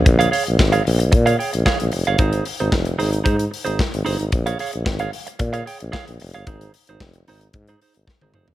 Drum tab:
HH |xxox-xoxxxox-xox|xxox-xoxxxox-xox|xxox-xoxxxox-xox|xxox-xoxxxox----|
SD |----o-------o---|----o-------o---|----o-------o---|----o-------o---|
T1 |----------------|----------------|----------------|-------------o--|
T2 |----------------|----------------|----------------|--------------o-|
FT |----------------|----------------|----------------|---------------o|
BD |o---o---o---o---|o---o---o---o---|o---o---o---o---|o---o---o---o---|